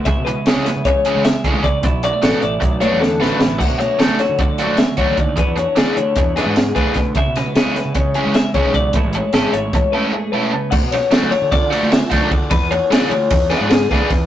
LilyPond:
<<
  \new Staff \with { instrumentName = "Clean electric guitar" } { \time 9/8 \key d \lydian \tempo 4. = 101 e''8 b'8 gis'8 b'8 cis''4 e''8 cis''8 d''8 | b'8 d''8 a'8 d''4 cis''8 a'8 b'4 | fis''8 cis''8 a'8 cis''8 d''4 e''8 cis''8 d''8 | b'8 cis''8 gis'8 cis''4 b'8 gis'8 b'4 |
e''8 b'8 gis'8 b'8 cis''4 e''8 cis''8 d''8 | b'8 cis''8 gis'8 cis''4 b'8 gis'8 b'4 | fis''8 cis''8 a'8 cis''8 d''4 e''8 cis''8 d''8 | b'8 cis''8 gis'8 cis''4 b'8 gis'8 b'4 | }
  \new Staff \with { instrumentName = "Overdriven electric guitar" } { \time 9/8 \key d \lydian r4 <e gis cis' gis'>8 r4 <e gis cis' gis'>8 r8 <e gis cis' gis'>8 r8 | r4 <fis b d' fis'>8 r4 <fis b d' fis'>8 r8 <fis b d' fis'>8 r8 | r4 <fis a d' fis'>8 r4 <fis a d' fis'>8 r8 <fis a d' fis'>8 r8 | r4 <e b d' gis'>8 r4 <e b d' gis'>8 r8 <e b d' gis'>8 r8 |
r4 <e gis cis' gis'>8 r4 <e gis cis' gis'>8 r8 <e gis cis' gis'>8 r8 | r4 <a cis' e' a'>8 r4 <a cis' e' a'>8 r8 <a cis' e' a'>8 r8 | r4 <fis a d' fis'>8 r4 <fis a d' fis'>8 r8 <fis a d' fis'>8 r8 | r4 <e b d' gis'>8 r4 <e b d' gis'>8 r8 <e b d' gis'>8 r8 | }
  \new Staff \with { instrumentName = "Clean electric guitar" } { \clef bass \time 9/8 \key d \lydian << { e'8 gis8 b8 e'4 gis2 | e'8 fis16 a8. e'4 a4 a8 e'8 | <d fis cis' e'>8 fis4 fis'4 fis2 | <e fis cis' d'>8 fis8 cis'8 d'4 fis2 |
e'8 fis16 gis16 b8 e'4 fis16 gis8. gis8 fis'8 | <e gis cis' e'>8 gis8 cis'8 e'4 gis2 | r1 r8 | r1 r8 | } \\ { cis2 cis4 e8 d8 cis8 | b,2 fis,4 d4 b,8 | d,2 a,2 d,8 | e,2 b,4 gis,8 a,8 b,8 |
cis2 cis4 e4 cis8 | a,2 e,4 a,8 b,8 cis8 | r1 r8 | r1 r8 | } >> }
  \new Staff \with { instrumentName = "Fingered electric bass" } { \clef bass \time 9/8 \key d \lydian cis,16 b,8 r8 cis,16 r16 cis16 cis8 r16 cis,8 r16 cis,16 cis,8. | b,,16 b,,8 r16 a,,16 r16 a,,8 b,,8 b,16 e,8. a,,16 r16 a,,8 | d,16 b,8 r8 d,16 r16 d16 d8 r16 d,8 r16 d,16 ees,8. | e,16 e,8 r16 d,16 r16 d,8 e,8 e16 gis,8. d,16 r16 d,8 |
cis,16 b,8 r8 cis,16 r16 cis16 cis8 r16 cis,8 r16 cis,16 b,,8. | a,,16 a,,8 r16 gis,,16 r16 gis,,8 a,,16 r2 r16 | d,16 b,8 r8 d,16 r16 d16 d8 r16 d,8 r16 d,16 d8. | e,16 e,8 r16 d,16 r16 d,8 e,8 e16 gis,8. d,16 r16 e,8 | }
  \new DrumStaff \with { instrumentName = "Drums" } \drummode { \time 9/8 <hh bd>8 hh8 <hh sn>8 <hh sn>8 <hh bd>8 hh8 <hh sn>8 <hh bd>8 <hh bd>8 | <hh bd>8 hh8 <hh sn>8 hh8 <hh bd>8 hh8 sn8 sn8 sn8 | <cymc bd>8 hh8 <hh sn>8 <hh sn>8 <hh bd>8 hh8 <hh sn>8 <hh bd>8 <hh bd>8 | <hh bd>8 hh8 <hh sn>8 hh8 <hh bd>8 <hh sn>8 <hh sn>8 <hh bd>8 <hh bd sn>8 |
<hh bd>8 <hh sn>8 <hh sn>8 <hh sn>8 <hh bd>8 hh8 <hh sn>8 <hh bd>8 <hh bd>8 | <hh bd>8 hh8 <hh sn>8 hh8 <hh bd>4 r4. | <cymc bd>8 <cymr sn>8 <cymr sn>8 cymr8 <bd cymr sn>8 cymr8 <cymr sn>8 <bd cymr sn>8 <bd cymr>8 | <bd cymr>8 cymr8 <cymr sn>8 cymr8 <bd cymr sn>8 <cymr sn>8 <cymr sn>8 <bd cymr sn>8 <bd cymr sn>8 | }
>>